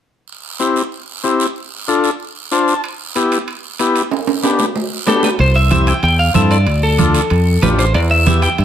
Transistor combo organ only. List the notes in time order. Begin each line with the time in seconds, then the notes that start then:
0.60 C4 E4 G4
1.24 C4 E4 G4
1.88 D4 F4 A4
2.52 D4 F4 C5 A5
3.15 B3 E4 G4
3.79 B3 E4 G4
4.43 B3 D4 G4
5.07 B3 D4 G4
5.70 C4 E4 G4
6.34 C4 E4 A4
6.98 D4 F4 A4
7.62 D4 F4 G4
8.26 B3 E4 G4